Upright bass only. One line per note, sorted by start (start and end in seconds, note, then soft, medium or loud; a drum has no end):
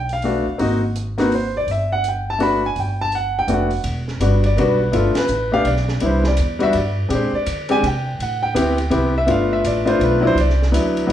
0.00 0.42 B1 medium
0.47 muted upright bass stroke soft
0.60 1.64 G#1 medium
1.67 2.72 G1 medium
2.76 3.44 G1 medium
3.47 3.82 F1 medium
3.84 4.19 E1 medium
4.20 4.55 G1 medium
4.56 4.92 B1 medium
4.92 5.14 G1 medium
5.29 5.64 A1 medium
5.65 6.00 B1 medium
6.02 6.37 C2 medium
6.39 6.74 E2 medium
6.74 7.09 G2 loud
7.10 7.31 A#2 medium
7.32 muted upright bass stroke soft
7.47 7.82 D3 medium
7.83 8.18 C3 medium
8.19 8.54 A2 medium
8.55 8.90 D2 medium
8.91 9.26 C2 medium
9.28 9.63 G1 medium
9.64 9.99 A1 medium
10.00 10.34 B1 medium
10.35 10.71 C2 medium
10.72 11.07 D2 medium
11.09 11.13 E2 medium